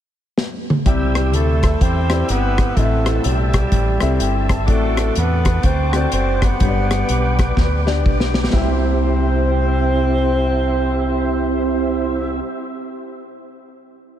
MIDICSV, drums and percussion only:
0, 0, Header, 1, 2, 480
1, 0, Start_track
1, 0, Key_signature, 0, "major"
1, 0, Tempo, 479233
1, 856, Time_signature, 4, 2, 24, 8
1, 14217, End_track
2, 0, Start_track
2, 0, Title_t, "Drums"
2, 376, Note_on_c, 9, 38, 69
2, 476, Note_off_c, 9, 38, 0
2, 702, Note_on_c, 9, 47, 81
2, 802, Note_off_c, 9, 47, 0
2, 860, Note_on_c, 9, 42, 71
2, 861, Note_on_c, 9, 36, 95
2, 960, Note_off_c, 9, 42, 0
2, 961, Note_off_c, 9, 36, 0
2, 1154, Note_on_c, 9, 42, 63
2, 1155, Note_on_c, 9, 37, 91
2, 1254, Note_off_c, 9, 42, 0
2, 1255, Note_off_c, 9, 37, 0
2, 1336, Note_on_c, 9, 42, 80
2, 1436, Note_off_c, 9, 42, 0
2, 1631, Note_on_c, 9, 42, 68
2, 1632, Note_on_c, 9, 36, 79
2, 1639, Note_on_c, 9, 37, 101
2, 1732, Note_off_c, 9, 36, 0
2, 1732, Note_off_c, 9, 42, 0
2, 1739, Note_off_c, 9, 37, 0
2, 1813, Note_on_c, 9, 36, 99
2, 1816, Note_on_c, 9, 42, 75
2, 1914, Note_off_c, 9, 36, 0
2, 1916, Note_off_c, 9, 42, 0
2, 2101, Note_on_c, 9, 37, 104
2, 2106, Note_on_c, 9, 42, 62
2, 2201, Note_off_c, 9, 37, 0
2, 2207, Note_off_c, 9, 42, 0
2, 2290, Note_on_c, 9, 42, 80
2, 2390, Note_off_c, 9, 42, 0
2, 2585, Note_on_c, 9, 37, 100
2, 2588, Note_on_c, 9, 36, 73
2, 2592, Note_on_c, 9, 42, 59
2, 2685, Note_off_c, 9, 37, 0
2, 2688, Note_off_c, 9, 36, 0
2, 2692, Note_off_c, 9, 42, 0
2, 2772, Note_on_c, 9, 36, 91
2, 2773, Note_on_c, 9, 42, 71
2, 2872, Note_off_c, 9, 36, 0
2, 2873, Note_off_c, 9, 42, 0
2, 3064, Note_on_c, 9, 42, 63
2, 3065, Note_on_c, 9, 37, 94
2, 3165, Note_off_c, 9, 42, 0
2, 3166, Note_off_c, 9, 37, 0
2, 3246, Note_on_c, 9, 42, 80
2, 3347, Note_off_c, 9, 42, 0
2, 3541, Note_on_c, 9, 42, 69
2, 3543, Note_on_c, 9, 36, 80
2, 3548, Note_on_c, 9, 37, 102
2, 3641, Note_off_c, 9, 42, 0
2, 3643, Note_off_c, 9, 36, 0
2, 3648, Note_off_c, 9, 37, 0
2, 3724, Note_on_c, 9, 42, 74
2, 3725, Note_on_c, 9, 36, 96
2, 3824, Note_off_c, 9, 42, 0
2, 3825, Note_off_c, 9, 36, 0
2, 4011, Note_on_c, 9, 37, 98
2, 4017, Note_on_c, 9, 42, 67
2, 4112, Note_off_c, 9, 37, 0
2, 4117, Note_off_c, 9, 42, 0
2, 4207, Note_on_c, 9, 42, 85
2, 4307, Note_off_c, 9, 42, 0
2, 4501, Note_on_c, 9, 36, 73
2, 4502, Note_on_c, 9, 37, 104
2, 4509, Note_on_c, 9, 42, 62
2, 4601, Note_off_c, 9, 36, 0
2, 4602, Note_off_c, 9, 37, 0
2, 4609, Note_off_c, 9, 42, 0
2, 4685, Note_on_c, 9, 42, 72
2, 4687, Note_on_c, 9, 36, 98
2, 4785, Note_off_c, 9, 42, 0
2, 4787, Note_off_c, 9, 36, 0
2, 4981, Note_on_c, 9, 42, 64
2, 4982, Note_on_c, 9, 37, 95
2, 5081, Note_off_c, 9, 42, 0
2, 5082, Note_off_c, 9, 37, 0
2, 5163, Note_on_c, 9, 42, 79
2, 5263, Note_off_c, 9, 42, 0
2, 5459, Note_on_c, 9, 42, 66
2, 5463, Note_on_c, 9, 36, 78
2, 5466, Note_on_c, 9, 37, 101
2, 5559, Note_off_c, 9, 42, 0
2, 5563, Note_off_c, 9, 36, 0
2, 5566, Note_off_c, 9, 37, 0
2, 5642, Note_on_c, 9, 42, 75
2, 5646, Note_on_c, 9, 36, 96
2, 5742, Note_off_c, 9, 42, 0
2, 5746, Note_off_c, 9, 36, 0
2, 5940, Note_on_c, 9, 37, 95
2, 5946, Note_on_c, 9, 42, 65
2, 6041, Note_off_c, 9, 37, 0
2, 6046, Note_off_c, 9, 42, 0
2, 6128, Note_on_c, 9, 42, 86
2, 6228, Note_off_c, 9, 42, 0
2, 6430, Note_on_c, 9, 37, 95
2, 6431, Note_on_c, 9, 36, 71
2, 6437, Note_on_c, 9, 42, 59
2, 6530, Note_off_c, 9, 37, 0
2, 6531, Note_off_c, 9, 36, 0
2, 6537, Note_off_c, 9, 42, 0
2, 6612, Note_on_c, 9, 42, 71
2, 6617, Note_on_c, 9, 36, 97
2, 6712, Note_off_c, 9, 42, 0
2, 6717, Note_off_c, 9, 36, 0
2, 6918, Note_on_c, 9, 42, 64
2, 6919, Note_on_c, 9, 37, 95
2, 7018, Note_off_c, 9, 42, 0
2, 7019, Note_off_c, 9, 37, 0
2, 7098, Note_on_c, 9, 42, 80
2, 7198, Note_off_c, 9, 42, 0
2, 7399, Note_on_c, 9, 36, 78
2, 7399, Note_on_c, 9, 42, 68
2, 7406, Note_on_c, 9, 37, 102
2, 7499, Note_off_c, 9, 36, 0
2, 7499, Note_off_c, 9, 42, 0
2, 7506, Note_off_c, 9, 37, 0
2, 7582, Note_on_c, 9, 36, 96
2, 7585, Note_on_c, 9, 38, 47
2, 7682, Note_off_c, 9, 36, 0
2, 7685, Note_off_c, 9, 38, 0
2, 7882, Note_on_c, 9, 38, 59
2, 7982, Note_off_c, 9, 38, 0
2, 8070, Note_on_c, 9, 36, 92
2, 8170, Note_off_c, 9, 36, 0
2, 8216, Note_on_c, 9, 38, 63
2, 8316, Note_off_c, 9, 38, 0
2, 8356, Note_on_c, 9, 38, 81
2, 8453, Note_off_c, 9, 38, 0
2, 8453, Note_on_c, 9, 38, 72
2, 8543, Note_off_c, 9, 38, 0
2, 8543, Note_on_c, 9, 38, 88
2, 8546, Note_on_c, 9, 36, 81
2, 8643, Note_off_c, 9, 38, 0
2, 8646, Note_off_c, 9, 36, 0
2, 14217, End_track
0, 0, End_of_file